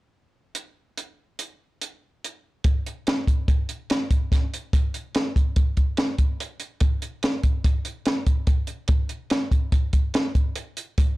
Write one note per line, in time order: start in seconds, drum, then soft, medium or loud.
0.55 closed hi-hat medium
0.98 closed hi-hat soft
1.39 closed hi-hat soft
1.81 closed hi-hat medium
2.24 closed hi-hat soft
2.64 kick medium
2.64 closed hi-hat medium
2.86 closed hi-hat medium
3.07 snare medium
3.07 closed hi-hat medium
3.27 kick medium
3.27 closed hi-hat medium
3.48 kick medium
3.48 closed hi-hat medium
3.69 closed hi-hat medium
3.90 snare medium
3.90 closed hi-hat medium
4.11 kick medium
4.11 closed hi-hat medium
4.32 kick medium
4.32 snare soft
4.32 closed hi-hat medium
4.54 closed hi-hat medium
4.73 kick loud
4.73 closed hi-hat medium
4.94 closed hi-hat medium
5.15 snare loud
5.15 closed hi-hat medium
5.36 kick medium
5.36 closed hi-hat medium
5.56 kick medium
5.56 closed hi-hat medium
5.77 kick medium
5.77 closed hi-hat soft
5.97 snare medium
5.97 closed hi-hat medium
6.18 kick medium
6.18 closed hi-hat medium
6.40 closed hi-hat medium
6.60 closed hi-hat medium
6.80 kick loud
6.80 closed hi-hat medium
7.02 closed hi-hat medium
7.23 snare medium
7.23 closed hi-hat medium
7.43 kick medium
7.43 closed hi-hat medium
7.64 kick medium
7.64 closed hi-hat medium
7.85 closed hi-hat medium
8.06 snare medium
8.06 closed hi-hat medium
8.27 kick medium
8.27 closed hi-hat medium
8.47 kick medium
8.47 closed hi-hat medium
8.67 closed hi-hat medium
8.88 kick loud
8.88 closed hi-hat medium
9.09 closed hi-hat medium
9.30 snare medium
9.30 closed hi-hat medium
9.51 kick medium
9.51 closed hi-hat medium
9.72 kick medium
9.72 closed hi-hat medium
9.93 kick medium
9.93 closed hi-hat medium
10.14 snare loud
10.14 closed hi-hat medium
10.35 kick medium
10.35 closed hi-hat medium
10.56 closed hi-hat medium
10.77 closed hi-hat medium
10.98 kick loud
10.98 closed hi-hat medium